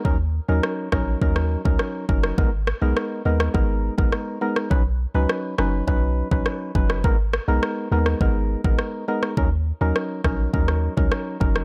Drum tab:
SD |----r-r--r--r--r|--r-r--r----r--r|----r-r-----r--r|--r-r--r----r--r|
BD |o-----o-o--o--o-|o-------o--o----|o-------o--o--o-|o-------o--o----|

SD |----r-r--r--r--r|
BD |o-----o-o--o--o-|